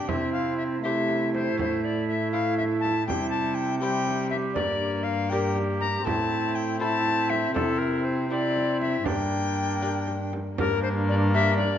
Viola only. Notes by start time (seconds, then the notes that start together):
0.08 C4
0.84 A3
3.07 G3
3.82 G3
4.56 A#3
6.05 C4
8.30 C4
9.05 A#3
10.56 A#3